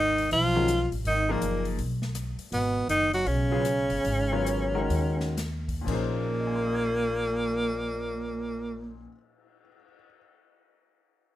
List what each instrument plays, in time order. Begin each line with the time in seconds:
Already playing: upright bass G#1, trombone D#3, tenor saxophone D#4
0.18 open hi-hat
0.31 upright bass B1, trombone F3, tenor saxophone F4, open hi-hat
0.55 grand piano D#3 G#3 C#4 F#4 A#4
0.68 cross-stick, closed hi-hat
0.92 upright bass A1, open hi-hat
1.05 upright bass G#1, trombone D#3, tenor saxophone D#4, open hi-hat
1.29 grand piano A#2 F3 D#4 G#4 A#4, trombone A#2, tenor saxophone A#3
1.42 upright bass F#1, closed hi-hat
1.65 open hi-hat
1.78 upright bass B1, open hi-hat
2.02 snare
2.15 cross-stick, closed hi-hat
2.39 muted upright bass stroke, open hi-hat
2.52 upright bass G#1, trombone B2, tenor saxophone B3, open hi-hat
2.88 upright bass F#1, trombone D#3, tenor saxophone D#4, closed hi-hat
3.13 trombone F#3, tenor saxophone F#4, open hi-hat
3.26 upright bass B1, trombone C#3, tenor saxophone C#4, open hi-hat
3.51 grand piano C#3 F#3 B3 F4 G#4
3.65 cross-stick, closed hi-hat
3.90 upright bass G1, open hi-hat
4.05 upright bass G#1, open hi-hat
4.32 grand piano F#3 B3 F4 A#4 C#5
4.46 closed hi-hat
4.74 grand piano D#3 G#3 C#4 F#4 A#4
4.90 upright bass D#2, open hi-hat
5.20 snare
5.37 cross-stick, snare, closed hi-hat
5.68 kick, open hi-hat
5.81 grand piano A#2 F3
5.86 upright bass A#1, trombone A#2, tenor saxophone A#3, grand piano C#4 D#4, kick, crash
5.91 grand piano G#4 C5
6.22 cymbal swell
6.40 grand piano D#5
6.47 grand piano G#5
6.56 grand piano C6
6.65 grand piano D#6
6.75 grand piano G#6
6.86 grand piano C7
6.97 grand piano D#7